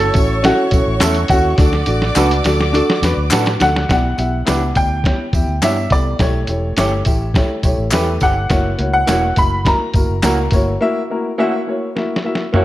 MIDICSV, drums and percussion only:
0, 0, Header, 1, 2, 480
1, 0, Start_track
1, 0, Tempo, 575816
1, 1325, Time_signature, 4, 2, 24, 8
1, 10544, End_track
2, 0, Start_track
2, 0, Title_t, "Drums"
2, 0, Note_on_c, 9, 42, 52
2, 83, Note_off_c, 9, 42, 0
2, 115, Note_on_c, 9, 42, 79
2, 126, Note_on_c, 9, 36, 88
2, 134, Note_on_c, 9, 54, 60
2, 198, Note_off_c, 9, 42, 0
2, 209, Note_off_c, 9, 36, 0
2, 218, Note_off_c, 9, 54, 0
2, 365, Note_on_c, 9, 42, 84
2, 372, Note_on_c, 9, 38, 104
2, 372, Note_on_c, 9, 54, 36
2, 449, Note_off_c, 9, 42, 0
2, 455, Note_off_c, 9, 54, 0
2, 456, Note_off_c, 9, 38, 0
2, 594, Note_on_c, 9, 42, 72
2, 600, Note_on_c, 9, 36, 81
2, 613, Note_on_c, 9, 54, 59
2, 677, Note_off_c, 9, 42, 0
2, 683, Note_off_c, 9, 36, 0
2, 696, Note_off_c, 9, 54, 0
2, 834, Note_on_c, 9, 42, 86
2, 838, Note_on_c, 9, 38, 110
2, 847, Note_on_c, 9, 39, 105
2, 847, Note_on_c, 9, 54, 106
2, 917, Note_off_c, 9, 42, 0
2, 921, Note_off_c, 9, 38, 0
2, 930, Note_off_c, 9, 39, 0
2, 930, Note_off_c, 9, 54, 0
2, 955, Note_on_c, 9, 42, 44
2, 1038, Note_off_c, 9, 42, 0
2, 1070, Note_on_c, 9, 42, 68
2, 1078, Note_on_c, 9, 38, 36
2, 1080, Note_on_c, 9, 36, 92
2, 1088, Note_on_c, 9, 54, 61
2, 1153, Note_off_c, 9, 42, 0
2, 1162, Note_off_c, 9, 38, 0
2, 1164, Note_off_c, 9, 36, 0
2, 1171, Note_off_c, 9, 54, 0
2, 1315, Note_on_c, 9, 42, 86
2, 1319, Note_on_c, 9, 36, 116
2, 1323, Note_on_c, 9, 38, 61
2, 1328, Note_on_c, 9, 54, 57
2, 1398, Note_off_c, 9, 42, 0
2, 1402, Note_off_c, 9, 36, 0
2, 1406, Note_off_c, 9, 38, 0
2, 1411, Note_off_c, 9, 54, 0
2, 1440, Note_on_c, 9, 38, 56
2, 1523, Note_off_c, 9, 38, 0
2, 1550, Note_on_c, 9, 54, 35
2, 1551, Note_on_c, 9, 42, 73
2, 1633, Note_off_c, 9, 54, 0
2, 1635, Note_off_c, 9, 42, 0
2, 1683, Note_on_c, 9, 38, 58
2, 1766, Note_off_c, 9, 38, 0
2, 1795, Note_on_c, 9, 42, 88
2, 1797, Note_on_c, 9, 39, 93
2, 1797, Note_on_c, 9, 54, 93
2, 1805, Note_on_c, 9, 38, 74
2, 1878, Note_off_c, 9, 42, 0
2, 1881, Note_off_c, 9, 39, 0
2, 1881, Note_off_c, 9, 54, 0
2, 1888, Note_off_c, 9, 38, 0
2, 1928, Note_on_c, 9, 42, 52
2, 2011, Note_off_c, 9, 42, 0
2, 2037, Note_on_c, 9, 42, 85
2, 2042, Note_on_c, 9, 54, 57
2, 2048, Note_on_c, 9, 38, 85
2, 2120, Note_off_c, 9, 42, 0
2, 2126, Note_off_c, 9, 54, 0
2, 2131, Note_off_c, 9, 38, 0
2, 2171, Note_on_c, 9, 38, 67
2, 2255, Note_off_c, 9, 38, 0
2, 2283, Note_on_c, 9, 54, 34
2, 2291, Note_on_c, 9, 42, 73
2, 2366, Note_off_c, 9, 54, 0
2, 2374, Note_off_c, 9, 42, 0
2, 2415, Note_on_c, 9, 38, 84
2, 2499, Note_off_c, 9, 38, 0
2, 2525, Note_on_c, 9, 54, 67
2, 2526, Note_on_c, 9, 42, 77
2, 2535, Note_on_c, 9, 38, 84
2, 2608, Note_off_c, 9, 54, 0
2, 2609, Note_off_c, 9, 42, 0
2, 2619, Note_off_c, 9, 38, 0
2, 2755, Note_on_c, 9, 39, 105
2, 2755, Note_on_c, 9, 54, 110
2, 2771, Note_on_c, 9, 42, 88
2, 2776, Note_on_c, 9, 38, 108
2, 2839, Note_off_c, 9, 39, 0
2, 2839, Note_off_c, 9, 54, 0
2, 2855, Note_off_c, 9, 42, 0
2, 2860, Note_off_c, 9, 38, 0
2, 2885, Note_on_c, 9, 42, 43
2, 2894, Note_on_c, 9, 38, 94
2, 2968, Note_off_c, 9, 42, 0
2, 2977, Note_off_c, 9, 38, 0
2, 3002, Note_on_c, 9, 42, 62
2, 3006, Note_on_c, 9, 54, 60
2, 3013, Note_on_c, 9, 38, 97
2, 3085, Note_off_c, 9, 42, 0
2, 3089, Note_off_c, 9, 54, 0
2, 3096, Note_off_c, 9, 38, 0
2, 3138, Note_on_c, 9, 38, 98
2, 3221, Note_off_c, 9, 38, 0
2, 3245, Note_on_c, 9, 36, 102
2, 3249, Note_on_c, 9, 42, 87
2, 3254, Note_on_c, 9, 54, 49
2, 3257, Note_on_c, 9, 38, 104
2, 3329, Note_off_c, 9, 36, 0
2, 3332, Note_off_c, 9, 42, 0
2, 3337, Note_off_c, 9, 54, 0
2, 3340, Note_off_c, 9, 38, 0
2, 3483, Note_on_c, 9, 54, 31
2, 3489, Note_on_c, 9, 42, 62
2, 3566, Note_off_c, 9, 54, 0
2, 3573, Note_off_c, 9, 42, 0
2, 3723, Note_on_c, 9, 42, 84
2, 3732, Note_on_c, 9, 39, 87
2, 3732, Note_on_c, 9, 54, 79
2, 3733, Note_on_c, 9, 38, 106
2, 3806, Note_off_c, 9, 42, 0
2, 3815, Note_off_c, 9, 39, 0
2, 3815, Note_off_c, 9, 54, 0
2, 3816, Note_off_c, 9, 38, 0
2, 3963, Note_on_c, 9, 42, 73
2, 3968, Note_on_c, 9, 36, 83
2, 3969, Note_on_c, 9, 54, 50
2, 4046, Note_off_c, 9, 42, 0
2, 4051, Note_off_c, 9, 36, 0
2, 4052, Note_off_c, 9, 54, 0
2, 4201, Note_on_c, 9, 36, 79
2, 4212, Note_on_c, 9, 42, 65
2, 4219, Note_on_c, 9, 38, 97
2, 4284, Note_off_c, 9, 36, 0
2, 4295, Note_off_c, 9, 42, 0
2, 4303, Note_off_c, 9, 38, 0
2, 4443, Note_on_c, 9, 42, 65
2, 4444, Note_on_c, 9, 36, 81
2, 4456, Note_on_c, 9, 54, 56
2, 4527, Note_off_c, 9, 36, 0
2, 4527, Note_off_c, 9, 42, 0
2, 4539, Note_off_c, 9, 54, 0
2, 4688, Note_on_c, 9, 39, 94
2, 4688, Note_on_c, 9, 42, 89
2, 4688, Note_on_c, 9, 54, 91
2, 4691, Note_on_c, 9, 38, 99
2, 4771, Note_off_c, 9, 39, 0
2, 4771, Note_off_c, 9, 42, 0
2, 4771, Note_off_c, 9, 54, 0
2, 4775, Note_off_c, 9, 38, 0
2, 4920, Note_on_c, 9, 42, 58
2, 4925, Note_on_c, 9, 36, 82
2, 4929, Note_on_c, 9, 38, 34
2, 4938, Note_on_c, 9, 54, 58
2, 5003, Note_off_c, 9, 42, 0
2, 5008, Note_off_c, 9, 36, 0
2, 5012, Note_off_c, 9, 38, 0
2, 5021, Note_off_c, 9, 54, 0
2, 5162, Note_on_c, 9, 42, 83
2, 5163, Note_on_c, 9, 36, 102
2, 5169, Note_on_c, 9, 38, 100
2, 5175, Note_on_c, 9, 54, 53
2, 5245, Note_off_c, 9, 42, 0
2, 5247, Note_off_c, 9, 36, 0
2, 5253, Note_off_c, 9, 38, 0
2, 5258, Note_off_c, 9, 54, 0
2, 5396, Note_on_c, 9, 42, 67
2, 5402, Note_on_c, 9, 54, 34
2, 5480, Note_off_c, 9, 42, 0
2, 5486, Note_off_c, 9, 54, 0
2, 5640, Note_on_c, 9, 42, 93
2, 5650, Note_on_c, 9, 38, 100
2, 5652, Note_on_c, 9, 39, 82
2, 5652, Note_on_c, 9, 54, 81
2, 5723, Note_off_c, 9, 42, 0
2, 5733, Note_off_c, 9, 38, 0
2, 5735, Note_off_c, 9, 39, 0
2, 5735, Note_off_c, 9, 54, 0
2, 5877, Note_on_c, 9, 42, 79
2, 5888, Note_on_c, 9, 36, 78
2, 5890, Note_on_c, 9, 54, 54
2, 5960, Note_off_c, 9, 42, 0
2, 5971, Note_off_c, 9, 36, 0
2, 5973, Note_off_c, 9, 54, 0
2, 6121, Note_on_c, 9, 36, 84
2, 6128, Note_on_c, 9, 42, 64
2, 6129, Note_on_c, 9, 54, 36
2, 6135, Note_on_c, 9, 38, 104
2, 6205, Note_off_c, 9, 36, 0
2, 6212, Note_off_c, 9, 42, 0
2, 6213, Note_off_c, 9, 54, 0
2, 6219, Note_off_c, 9, 38, 0
2, 6363, Note_on_c, 9, 42, 68
2, 6365, Note_on_c, 9, 36, 81
2, 6365, Note_on_c, 9, 54, 62
2, 6446, Note_off_c, 9, 42, 0
2, 6448, Note_off_c, 9, 36, 0
2, 6448, Note_off_c, 9, 54, 0
2, 6594, Note_on_c, 9, 39, 98
2, 6594, Note_on_c, 9, 54, 102
2, 6611, Note_on_c, 9, 42, 78
2, 6614, Note_on_c, 9, 38, 103
2, 6677, Note_off_c, 9, 39, 0
2, 6677, Note_off_c, 9, 54, 0
2, 6694, Note_off_c, 9, 42, 0
2, 6697, Note_off_c, 9, 38, 0
2, 6839, Note_on_c, 9, 54, 62
2, 6843, Note_on_c, 9, 42, 59
2, 6849, Note_on_c, 9, 36, 85
2, 6852, Note_on_c, 9, 38, 34
2, 6922, Note_off_c, 9, 54, 0
2, 6927, Note_off_c, 9, 42, 0
2, 6932, Note_off_c, 9, 36, 0
2, 6936, Note_off_c, 9, 38, 0
2, 7082, Note_on_c, 9, 42, 83
2, 7087, Note_on_c, 9, 36, 112
2, 7090, Note_on_c, 9, 38, 96
2, 7091, Note_on_c, 9, 54, 54
2, 7165, Note_off_c, 9, 42, 0
2, 7170, Note_off_c, 9, 36, 0
2, 7173, Note_off_c, 9, 38, 0
2, 7174, Note_off_c, 9, 54, 0
2, 7324, Note_on_c, 9, 42, 62
2, 7408, Note_off_c, 9, 42, 0
2, 7565, Note_on_c, 9, 42, 85
2, 7569, Note_on_c, 9, 39, 85
2, 7569, Note_on_c, 9, 54, 91
2, 7575, Note_on_c, 9, 38, 103
2, 7648, Note_off_c, 9, 42, 0
2, 7652, Note_off_c, 9, 39, 0
2, 7652, Note_off_c, 9, 54, 0
2, 7659, Note_off_c, 9, 38, 0
2, 7805, Note_on_c, 9, 42, 77
2, 7812, Note_on_c, 9, 36, 73
2, 7816, Note_on_c, 9, 54, 55
2, 7888, Note_off_c, 9, 42, 0
2, 7896, Note_off_c, 9, 36, 0
2, 7900, Note_off_c, 9, 54, 0
2, 8045, Note_on_c, 9, 36, 79
2, 8049, Note_on_c, 9, 42, 74
2, 8053, Note_on_c, 9, 54, 32
2, 8056, Note_on_c, 9, 38, 96
2, 8128, Note_off_c, 9, 36, 0
2, 8133, Note_off_c, 9, 42, 0
2, 8136, Note_off_c, 9, 54, 0
2, 8140, Note_off_c, 9, 38, 0
2, 8282, Note_on_c, 9, 42, 61
2, 8288, Note_on_c, 9, 36, 80
2, 8297, Note_on_c, 9, 54, 57
2, 8366, Note_off_c, 9, 42, 0
2, 8372, Note_off_c, 9, 36, 0
2, 8380, Note_off_c, 9, 54, 0
2, 8525, Note_on_c, 9, 42, 86
2, 8528, Note_on_c, 9, 38, 105
2, 8528, Note_on_c, 9, 39, 99
2, 8528, Note_on_c, 9, 54, 95
2, 8608, Note_off_c, 9, 42, 0
2, 8611, Note_off_c, 9, 39, 0
2, 8611, Note_off_c, 9, 54, 0
2, 8612, Note_off_c, 9, 38, 0
2, 8758, Note_on_c, 9, 42, 67
2, 8767, Note_on_c, 9, 38, 33
2, 8770, Note_on_c, 9, 36, 82
2, 8778, Note_on_c, 9, 54, 56
2, 8841, Note_off_c, 9, 42, 0
2, 8850, Note_off_c, 9, 38, 0
2, 8853, Note_off_c, 9, 36, 0
2, 8861, Note_off_c, 9, 54, 0
2, 9974, Note_on_c, 9, 38, 49
2, 10058, Note_off_c, 9, 38, 0
2, 10139, Note_on_c, 9, 38, 57
2, 10222, Note_off_c, 9, 38, 0
2, 10297, Note_on_c, 9, 38, 67
2, 10381, Note_off_c, 9, 38, 0
2, 10451, Note_on_c, 9, 45, 69
2, 10535, Note_off_c, 9, 45, 0
2, 10544, End_track
0, 0, End_of_file